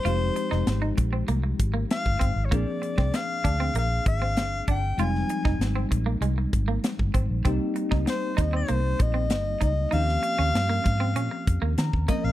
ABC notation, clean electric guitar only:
X:1
M:4/4
L:1/16
Q:1/4=97
K:Fm
V:1 name="Clean electric guitar"
F z2 E z E z C B, z2 B, z2 C z | B, z2 C z2 =D C B, z2 C z2 D z | F z2 E z C z B, A, z2 B, z2 C z | C z2 E z2 E C B, z2 C z2 E z |
E z2 D z B, z C D z2 B, z2 B, z |]